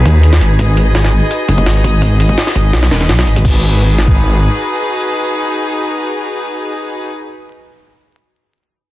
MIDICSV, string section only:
0, 0, Header, 1, 2, 480
1, 0, Start_track
1, 0, Key_signature, 5, "minor"
1, 0, Tempo, 357143
1, 792, Time_signature, 4, 2, 24, 8
1, 11978, End_track
2, 0, Start_track
2, 0, Title_t, "String section"
2, 0, Program_c, 0, 48
2, 0, Note_on_c, 0, 63, 71
2, 0, Note_on_c, 0, 66, 68
2, 0, Note_on_c, 0, 68, 70
2, 0, Note_on_c, 0, 71, 78
2, 780, Note_off_c, 0, 71, 0
2, 796, Note_on_c, 0, 75, 77
2, 4577, Note_off_c, 0, 63, 0
2, 4577, Note_off_c, 0, 68, 0
2, 4578, Note_off_c, 0, 66, 0
2, 4620, Note_off_c, 0, 75, 0
2, 4634, Note_on_c, 0, 66, 64
2, 4636, Note_on_c, 0, 63, 73
2, 4638, Note_on_c, 0, 71, 82
2, 4639, Note_on_c, 0, 68, 66
2, 9494, Note_off_c, 0, 66, 0
2, 9495, Note_off_c, 0, 63, 0
2, 9496, Note_off_c, 0, 68, 0
2, 9496, Note_off_c, 0, 71, 0
2, 11978, End_track
0, 0, End_of_file